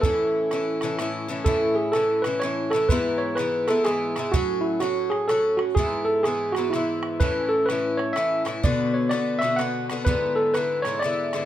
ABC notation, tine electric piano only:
X:1
M:3/4
L:1/8
Q:"Swing" 1/4=126
K:A
V:1 name="Tine electric piano"
A4 z2 | A G A B c A | B c B A G2 | F E F G A F |
G A G F E2 | B A B c e z | d c d e f z | B A B c d2 |]